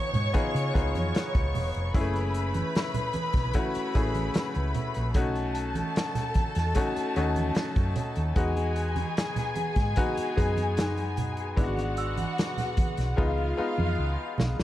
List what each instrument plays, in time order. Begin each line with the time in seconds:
Already playing: grand piano B3 D#4 F4 G#4, violin section C#5 C#6
0.13 fingered electric bass G#2, closed hi-hat, low conga
0.33 grand piano B3 D#4 F4 G#4, kick, closed hi-hat, muted conga, high conga
0.55 fingered electric bass C#3, closed hi-hat, muted conga
0.74 fingered electric bass C#2, grand piano B3 D#4 F4 G#4, kick, closed hi-hat
0.95 fingered electric bass F2, closed hi-hat, high conga
1.15 snare, closed hi-hat
1.35 fingered electric bass C#2, kick, closed hi-hat
1.54 fingered electric bass E1, open hi-hat, low conga
1.74 fingered electric bass F1, closed hi-hat
1.94 fingered electric bass F#1, grand piano G#3 C#4 E4 G#4, violin section B4 B5, kick, closed hi-hat, muted conga
2.00 grand piano A3
2.14 closed hi-hat, muted conga
2.34 closed hi-hat
2.54 closed hi-hat, high conga
2.75 snare, closed hi-hat
2.94 closed hi-hat, muted conga, low conga
3.13 muted fingered electric bass stroke, closed hi-hat, high conga
3.33 fingered electric bass B1, kick, snare, closed hi-hat
3.53 grand piano A3 C#4 E4 F#4, kick, closed hi-hat, muted conga, high conga
3.75 muted fingered electric bass stroke, closed hi-hat
3.95 fingered electric bass A1, grand piano A3 C#4 E4 G#4, kick, closed hi-hat
4.15 closed hi-hat, high conga
4.34 muted fingered electric bass stroke, snare, closed hi-hat, muted conga
4.55 fingered electric bass C#2, closed hi-hat, muted conga
4.74 closed hi-hat, low conga
4.94 fingered electric bass A#1, closed hi-hat
5.14 fingered electric bass B1, grand piano A3 C#4 D#4 F#4, violin section A4 A5, kick, closed hi-hat, muted conga
5.36 closed hi-hat
5.55 celesta A5, closed hi-hat
5.75 closed hi-hat, high conga
5.96 snare, closed hi-hat
6.15 snare, closed hi-hat, low conga
6.34 muted fingered electric bass stroke, kick, closed hi-hat, high conga
6.55 fingered electric bass E2, snare, closed hi-hat
6.75 grand piano A3 C#4 D#4 F#4, kick, closed hi-hat, muted conga, high conga
6.96 muted fingered electric bass stroke, closed hi-hat, muted conga
7.16 fingered electric bass D#2, grand piano A3 C#4 D#4 F#4, closed hi-hat
7.36 closed hi-hat, high conga
7.55 snare, closed hi-hat
7.76 fingered electric bass F#2, kick, closed hi-hat
7.96 celesta C#5, closed hi-hat, low conga
8.16 fingered electric bass D#2, closed hi-hat
8.35 fingered electric bass E2, grand piano G#3 B3 D#4 F#4, violin section G#4 G#5, kick, closed hi-hat
8.56 closed hi-hat, muted conga
8.76 closed hi-hat
8.96 closed hi-hat, high conga
9.17 snare, closed hi-hat
9.36 snare, closed hi-hat, low conga
9.55 muted fingered electric bass stroke, closed hi-hat, high conga
9.76 fingered electric bass G#2, kick, snare, closed hi-hat
9.96 grand piano G#3 B3 D#4 F#4, kick, closed hi-hat, muted conga, high conga
10.17 muted fingered electric bass stroke, closed hi-hat
10.36 fingered electric bass F#2, grand piano G#3 B3 D#4 G#4, kick, closed hi-hat
10.57 closed hi-hat, high conga
10.77 celesta D#4, snare, closed hi-hat
10.97 closed hi-hat, muted conga
11.17 closed hi-hat, low conga
11.37 closed hi-hat
11.56 fingered electric bass G#1, grand piano G#3 B3 D4 E4, violin section F#4 F#5, kick, closed hi-hat
11.64 grand piano F#4
11.77 closed hi-hat, muted conga
11.97 celesta E6, closed hi-hat
12.17 closed hi-hat, high conga
12.22 celesta G#5
12.38 snare, closed hi-hat
12.48 celesta B5
12.57 snare, closed hi-hat, low conga
12.77 muted fingered electric bass stroke, kick, closed hi-hat, high conga
12.97 fingered electric bass B1, snare, closed hi-hat
13.17 fingered electric bass C#2, grand piano G#3 B3 D#4 F4, violin section F4 F5, kick, muted conga, high conga
13.38 muted conga
13.57 grand piano G#3 B3 D#4 F4, muted fingered electric bass stroke
13.78 fingered electric bass F2, high conga
13.99 fingered electric bass C#2
14.38 fingered electric bass B1, snare, low conga
14.60 fingered electric bass C#2, snare